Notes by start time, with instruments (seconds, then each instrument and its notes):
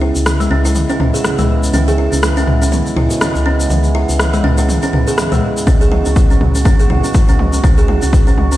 Already playing: fm bass C#2, analog synth pad C#3 G#3 B3 E4
0.01 kalimba E4
0.15 fm bass C#2, shaker
0.26 cross-stick, mid tom, shaker
0.40 kalimba G#3, shaker
0.51 fm bass C#2, kalimba C#4
0.65 kalimba E4, shaker
0.75 mid tom, shaker
0.89 kalimba C#4, shaker
1.00 fm bass C#2, kalimba C#4, mid tom
1.14 kalimba G#4, shaker
1.24 cross-stick, mid tom, shaker
1.38 fm bass C#2, kalimba G#3, mid tom, shaker
1.63 shaker
1.73 fm bass C#2, kalimba C#4, mid tom, shaker
1.88 kalimba G#4, shaker
1.98 kalimba E4
2.12 fm bass C#2, kalimba C#4, shaker
2.23 cross-stick, mid tom, shaker
2.37 kalimba C#4, shaker
2.47 fm bass C#2, mid tom
2.62 kalimba C#4, shaker
2.72 kalimba B3, mid tom, shaker
2.86 shaker
2.96 fm bass C#2, kalimba E4, mid tom
3.11 kalimba F#4, shaker
3.21 kalimba C#4, cross-stick, mid tom, shaker
3.35 fm bass C#2, shaker
3.46 kalimba C#4
3.60 shaker
3.70 fm bass C#2, mid tom, shaker
3.84 shaker
3.95 kalimba E4
4.09 fm bass C#2, shaker
4.20 cross-stick, mid tom, shaker
4.33 kalimba G#3, shaker
4.44 fm bass C#2, kalimba C#4, mid tom
4.58 kalimba E4, shaker
4.69 mid tom, shaker
4.82 kalimba C#4, shaker
4.93 fm bass C#2, kalimba C#4, mid tom
5.07 kalimba G#4, shaker
5.18 cross-stick, mid tom, shaker
5.32 fm bass C#2, kalimba G#3, mid tom, shaker
5.57 shaker
5.67 fm bass C#2, kalimba C#4, analog synth pad F#4, kick, mid tom, shaker
5.81 kalimba G#4, shaker
5.92 kalimba E4, mid tom
6.06 fm bass C#2, kalimba C#4, shaker
6.16 kick, mid tom, shaker
6.30 kalimba C#4, shaker
6.41 fm bass C#2, mid tom
6.55 kalimba C#4, shaker
6.65 kalimba C#4, kick, mid tom, shaker
6.80 kalimba G#4, shaker
6.90 fm bass C#2, kalimba E4, mid tom
7.04 kalimba C#4, shaker
7.14 kick, mid tom, shaker
7.29 fm bass C#2, kalimba C#4, shaker
7.39 mid tom
7.53 kalimba C#4, shaker
7.64 fm bass C#2, kalimba C#4, kick, mid tom, shaker
7.78 kalimba G#4, shaker
7.88 kalimba E4, mid tom
8.02 fm bass C#2, kalimba C#4, shaker
8.13 kick, mid tom, shaker
8.27 kalimba C#4, shaker
8.37 fm bass C#2, mid tom
8.52 kalimba C#4, shaker